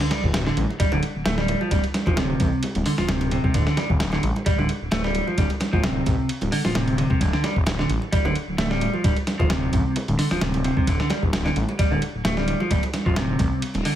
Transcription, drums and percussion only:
0.01 snare
0.11 snare, ride, muted conga, high conga
0.23 kick, low conga
0.34 snare, ride, muted conga
0.47 snare
0.57 ride, high conga
0.70 muted conga
0.80 kick, ride
0.92 muted conga, high conga
1.03 ride
1.26 snare, ride, muted conga, high conga
1.38 snare
1.48 ride, muted conga
1.61 high conga
1.71 kick, ride
1.84 ride, muted conga
1.94 snare, ride, high conga
2.06 kick, muted conga, low conga
2.17 snare, ride
2.40 kick, ride, muted conga, high conga
2.63 ride, muted conga
2.75 ride, high conga
2.86 open hi-hat
2.98 snare, muted conga
3.09 snare, ride, high conga
3.21 ride, muted conga
3.31 ride
3.44 kick, high conga
3.54 kick, ride, muted conga
3.67 snare
3.77 snare, ride, muted conga, high conga
3.90 kick, low conga
4.00 snare, ride
4.12 snare, muted conga
4.23 ride, high conga
4.36 muted conga
4.46 kick, ride
4.59 high conga
4.69 ride, muted conga
4.91 snare, ride, muted conga, high conga
5.04 snare
5.15 ride
5.27 muted conga, high conga
5.38 kick, ride
5.50 ride, muted conga
5.60 snare, ride, high conga
5.73 kick, low conga
5.84 snare, ride, muted conga
6.06 kick, ride, muted conga, high conga
6.29 ride
6.41 ride, muted conga, high conga
6.52 open hi-hat
6.65 snare, muted conga
6.75 snare, ride, high conga
6.88 ride
6.98 ride, muted conga
7.10 kick, high conga
7.21 kick, ride
7.33 snare
7.44 snare, ride, muted conga, high conga
7.56 kick, low conga
7.66 snare, ride, muted conga
7.79 snare
7.90 ride, high conga
8.02 muted conga
8.13 kick, ride
8.25 muted conga, high conga
8.35 ride
8.58 snare, ride, muted conga, high conga
8.71 snare
8.81 ride, muted conga
8.94 high conga
9.04 kick, ride
9.17 ride, muted conga
9.27 snare, ride, high conga
9.39 kick, muted conga, low conga
9.50 snare, ride
9.73 kick, ride, muted conga, high conga
9.96 ride, muted conga
10.08 ride, high conga
10.19 open hi-hat
10.31 snare, muted conga
10.41 snare, ride, high conga
10.54 ride, muted conga
10.64 ride
10.77 kick, high conga
10.87 kick, ride, muted conga
11.00 snare
11.10 snare, ride, muted conga, high conga
11.23 kick, low conga
11.33 snare, ride
11.46 snare, muted conga
11.56 ride, high conga
11.69 muted conga
11.79 kick, ride
11.92 high conga
12.02 ride, muted conga
12.25 snare, ride, muted conga, high conga
12.37 snare
12.48 ride
12.60 muted conga, high conga
12.71 kick, ride
12.83 ride, muted conga
12.93 snare, ride, high conga
13.06 kick, low conga
13.16 snare, ride, muted conga
13.39 kick, ride, muted conga, high conga
13.62 ride
13.74 ride, muted conga, high conga
13.85 open hi-hat

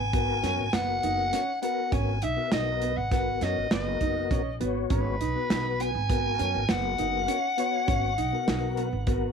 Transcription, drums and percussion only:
0.13 kick, closed hi-hat
0.44 snare, closed hi-hat
0.73 snare, closed hi-hat
1.03 closed hi-hat
1.33 snare, closed hi-hat
1.63 closed hi-hat
1.92 kick, closed hi-hat
2.22 closed hi-hat
2.52 snare, closed hi-hat
2.82 closed hi-hat
3.11 kick, snare, closed hi-hat
3.41 snare, closed hi-hat
3.71 snare, closed hi-hat
4.01 kick, closed hi-hat
4.31 kick, closed hi-hat
4.61 closed hi-hat
4.90 kick, closed hi-hat
5.21 closed hi-hat
5.50 snare, closed hi-hat
5.80 closed hi-hat
6.10 kick, closed hi-hat
6.39 closed hi-hat
6.69 snare, closed hi-hat
6.98 closed hi-hat
7.28 closed hi-hat
7.58 closed hi-hat
7.88 kick, closed hi-hat
8.18 closed hi-hat
8.48 snare, closed hi-hat
8.77 closed hi-hat
9.07 kick, closed hi-hat

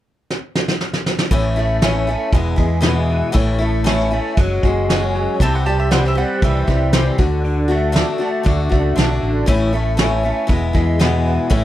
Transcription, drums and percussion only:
0.30 snare
0.55 snare
0.68 snare
0.81 snare
0.93 snare
1.06 snare
1.19 snare
1.31 kick, open hi-hat
1.56 open hi-hat
1.81 snare, open hi-hat
2.06 open hi-hat
2.32 kick, open hi-hat
2.57 kick, open hi-hat
2.82 snare, open hi-hat
3.09 open hi-hat
3.34 kick, open hi-hat
3.60 open hi-hat
3.86 snare, open hi-hat
3.99 snare
4.11 open hi-hat
4.37 kick, open hi-hat
4.63 kick, open hi-hat
4.89 snare, open hi-hat
5.15 open hi-hat
5.40 kick, open hi-hat
5.66 open hi-hat
5.91 snare, open hi-hat
6.05 snare
6.17 open hi-hat
6.42 kick, open hi-hat
6.67 kick, open hi-hat
6.92 snare, open hi-hat
7.19 kick, open hi-hat
7.44 open hi-hat
7.71 open hi-hat
7.95 snare, open hi-hat
8.21 open hi-hat
8.46 kick, open hi-hat
8.72 kick, open hi-hat
8.98 snare, open hi-hat
9.23 open hi-hat
9.48 kick, open hi-hat
9.73 open hi-hat
9.98 snare, open hi-hat
10.24 open hi-hat
10.49 kick, open hi-hat
10.75 kick, open hi-hat
11.00 snare, open hi-hat
11.26 open hi-hat
11.51 kick, open hi-hat

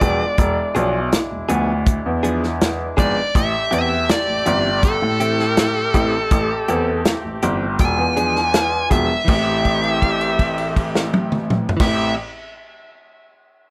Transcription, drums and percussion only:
0.01 kick, closed hi-hat
0.38 kick, closed hi-hat
0.76 closed hi-hat
1.12 snare, closed hi-hat
1.49 closed hi-hat
1.86 kick, closed hi-hat
2.24 closed hi-hat
2.43 snare
2.61 snare, closed hi-hat
2.98 kick, closed hi-hat
3.35 kick, closed hi-hat
3.72 closed hi-hat
4.09 snare, closed hi-hat
4.46 closed hi-hat
4.83 kick, closed hi-hat
5.20 closed hi-hat
5.39 snare
5.57 snare, closed hi-hat
5.94 kick, closed hi-hat
6.31 kick, closed hi-hat
6.68 closed hi-hat
7.05 snare, closed hi-hat
7.42 closed hi-hat
7.79 kick, closed hi-hat
8.17 closed hi-hat
8.36 snare
8.54 snare, closed hi-hat
8.91 kick, closed hi-hat
9.28 kick, crash
9.65 kick, crash
9.83 crash
10.02 kick, crash
10.21 crash
10.39 kick, crash
10.58 crash
10.76 kick, crash
10.95 snare
11.14 high tom
11.32 mid tom
11.50 mid tom
11.69 floor tom
11.80 kick, snare, crash

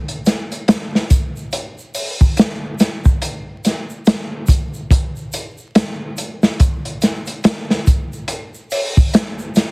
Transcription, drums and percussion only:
0.08 closed hi-hat
0.26 snare, closed hi-hat, shaker
0.52 closed hi-hat, shaker
0.68 snare, closed hi-hat, shaker
0.95 snare
1.10 kick, closed hi-hat, shaker
1.36 shaker
1.52 closed hi-hat, shaker
1.78 shaker
1.94 open hi-hat, shaker
2.21 kick, shaker
2.37 snare, closed hi-hat, shaker
2.79 snare, closed hi-hat, shaker
3.05 kick, shaker
3.22 closed hi-hat, shaker
3.65 snare, closed hi-hat, shaker
3.90 shaker
4.06 snare, closed hi-hat, shaker
4.47 kick, closed hi-hat, shaker
4.74 shaker
4.91 kick, closed hi-hat, shaker
5.16 shaker
5.33 closed hi-hat, shaker
5.58 shaker
5.75 snare, closed hi-hat, shaker
6.17 closed hi-hat, shaker
6.43 snare, shaker
6.60 kick, closed hi-hat, shaker
6.85 closed hi-hat
7.02 snare, closed hi-hat, shaker
7.26 closed hi-hat, shaker
7.44 snare, closed hi-hat, shaker
7.70 snare
7.87 kick, closed hi-hat, shaker
8.13 shaker
8.28 closed hi-hat, shaker
8.54 shaker
8.71 open hi-hat, shaker
8.97 kick, shaker
9.13 snare, closed hi-hat, shaker
9.39 shaker
9.55 snare, closed hi-hat, shaker

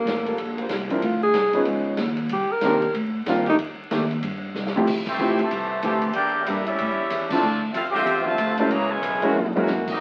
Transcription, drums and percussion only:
0.07 snare, hi-hat pedal, ride
0.26 ride
0.38 ride
0.58 ride
0.69 snare, hi-hat pedal, ride
0.90 ride
1.02 ride
1.34 snare, hi-hat pedal, ride
1.53 ride
1.65 ride
1.97 snare, hi-hat pedal, ride
2.17 ride
2.29 ride
2.61 snare, hi-hat pedal, ride
2.82 ride
2.94 ride
3.26 snare, hi-hat pedal, ride
3.46 ride
3.59 ride
3.91 snare, hi-hat pedal, ride
4.11 ride
4.23 ride
4.55 snare, hi-hat pedal
4.66 snare
4.77 floor tom
4.87 kick, crash
5.06 kick, crash
5.18 hi-hat pedal
5.39 ride
5.51 ride
5.83 hi-hat pedal, ride
6.02 ride
6.13 ride
6.46 hi-hat pedal, ride
6.66 ride
6.78 ride
7.10 hi-hat pedal, ride
7.30 kick, crash
7.74 hi-hat pedal, ride
7.94 snare
8.07 ride
8.38 hi-hat pedal, ride
8.57 ride
8.71 ride
9.03 hi-hat pedal, ride
9.22 ride
9.35 high tom
9.46 high tom
9.56 high tom
9.67 snare, hi-hat pedal
9.87 kick, crash

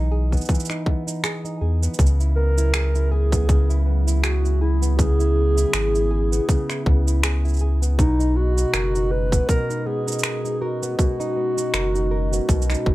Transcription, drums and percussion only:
0.32 kick, cabasa
0.37 cabasa
0.41 cabasa
0.45 kick, cabasa
0.49 cabasa
0.55 cabasa
0.60 cabasa
0.65 cabasa
0.70 finger snap, cabasa
0.86 kick
1.08 cabasa
1.24 finger snap, cabasa
1.45 cabasa
1.83 cabasa
1.94 cabasa
1.99 kick, cabasa
2.06 cabasa
2.20 cabasa
2.58 cabasa
2.74 finger snap, cabasa
2.95 cabasa
3.32 kick, cabasa
3.49 kick, cabasa
3.70 cabasa
4.08 cabasa
4.24 finger snap, cabasa
4.45 cabasa
4.83 cabasa
4.99 kick, cabasa
5.20 cabasa
5.58 cabasa
5.73 finger snap, cabasa
5.95 cabasa
6.33 cabasa
6.49 kick, cabasa
6.70 finger snap, cabasa
6.86 kick
7.08 cabasa
7.23 finger snap, cabasa
7.45 cabasa
7.48 cabasa
7.54 cabasa
7.56 cabasa
7.59 cabasa
7.83 cabasa
7.99 kick, cabasa
8.20 cabasa
8.58 cabasa
8.74 finger snap, cabasa
8.95 cabasa
9.32 kick, cabasa
9.49 kick, cabasa
9.70 cabasa
10.08 cabasa
10.12 cabasa
10.19 cabasa
10.23 finger snap, cabasa
10.45 cabasa
10.83 cabasa
10.99 kick, cabasa
11.21 cabasa
11.58 cabasa
11.74 finger snap, cabasa
11.95 cabasa
12.33 cabasa
12.49 kick, cabasa
12.62 cabasa
12.70 finger snap, cabasa
12.74 cabasa
12.86 kick

